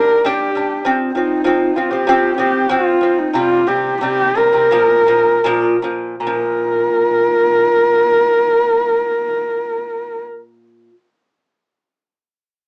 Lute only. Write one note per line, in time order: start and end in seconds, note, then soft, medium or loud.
0.00 0.19 G3 medium
0.00 0.20 D4 medium
0.25 0.49 G3 loud
0.25 0.49 D4 loud
0.55 0.79 G3 medium
0.55 0.80 D4 medium
0.85 1.09 F3 medium
0.85 1.10 C4 loud
1.15 1.39 F3 medium
1.15 1.40 C4 medium
1.44 1.69 F3 loud
1.44 1.70 C4 loud
1.76 1.88 F3 medium
1.76 1.89 C4 medium
1.91 2.03 F3 medium
1.91 2.04 C4 medium
2.07 2.32 F3 loud
2.07 2.33 C4 loud
2.38 2.63 F3 medium
2.38 2.64 C4 medium
2.69 2.95 F3 loud
2.69 2.96 C4 loud
3.01 3.27 F3 medium
3.01 3.28 C4 medium
3.33 3.60 C3 medium
3.33 3.61 G3 loud
3.67 3.94 C3 medium
3.67 3.95 G3 medium
4.01 4.29 C3 medium
4.01 4.30 G3 medium
4.35 4.50 C3 medium
4.35 4.51 G3 medium
4.53 4.67 C3 medium
4.53 4.68 G3 medium
4.71 5.00 A#2 loud
4.71 5.01 F3 loud
5.07 5.37 A#2 medium
5.07 5.38 F3 medium
5.44 5.75 A#2 loud
5.44 5.76 F3 loud
5.82 6.14 A#2 medium
5.82 6.15 F3 medium
6.20 10.90 A#2 medium
6.27 10.93 F3 loud